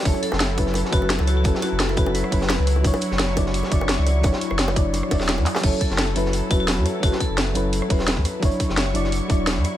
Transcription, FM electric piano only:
X:1
M:4/4
L:1/8
Q:"Swing 16ths" 1/4=172
K:F#m
V:1 name="FM electric piano"
[F,CEA]3 [F,CEB] z [F,CEB] z2 | [F,CEA]3 [F,CEB] z [F,CEB] z2 | [F,DEc]3 [F,DEd] z [F,DEd] z2 | [F,DEc]3 [F,DEd] z [F,DEd]3 |
[F,CEA]3 [F,CEB] z [F,CEB] z2 | [F,CEA]3 [F,CEB] z [F,CEB] z2 | [F,DEc]3 [F,DEd] z [F,DEd] z2 |]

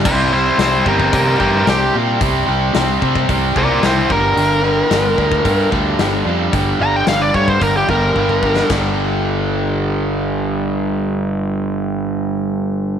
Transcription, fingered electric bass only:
X:1
M:4/4
L:1/8
Q:1/4=111
K:Gdor
V:1 name="Fingered electric bass" clef=bass
C,,2 C,, G,,, C, G,, C,, B,, | C,, C,, C,, C, C,, C,, C,, G,,, | G,,,2 G,,, D,, G,, D,, G,,, F,, | G,,, G,,, G,,, G,, G,,, G,,, G,,,2 |
G,,,8- | G,,,8 |]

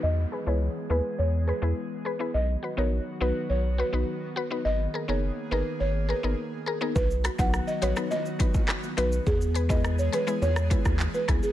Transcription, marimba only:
X:1
M:4/4
L:1/16
Q:1/4=104
K:B
V:1 name="Marimba"
d2 z c z2 B z c z B z4 z | d2 z c z2 B z c z B z4 z | d2 z c z2 B z c z B z4 z | B2 z f z d c z d3 z3 B z |
G2 z d z c B z c3 z2 B z G |]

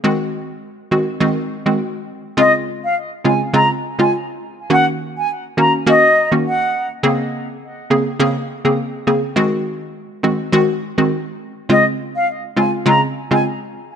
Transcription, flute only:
X:1
M:4/4
L:1/16
Q:"Swing 16ths" 1/4=103
K:Db
V:1 name="Flute"
z16 | e z2 f z2 a z b z2 a z4 | g z2 a z2 b z e3 z g3 z | z16 |
z16 | e z2 f z2 a z b z2 a z4 |]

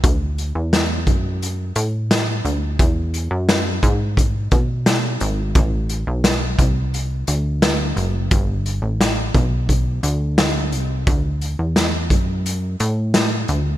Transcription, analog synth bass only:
X:1
M:4/4
L:1/16
Q:1/4=87
K:Dmix
V:1 name="Analog synth bass" clef=bass
D,,3 E,,3 F,,4 A,,4 D,,2 | E,,3 F,,3 ^G,,4 B,,4 ^G,,,2 | A,,,3 B,,,3 C,,4 D,,4 F,,,2 | G,,,3 A,,,3 B,,,4 D,,4 C,,2 |
D,,3 E,,3 F,,4 A,,4 D,,2 |]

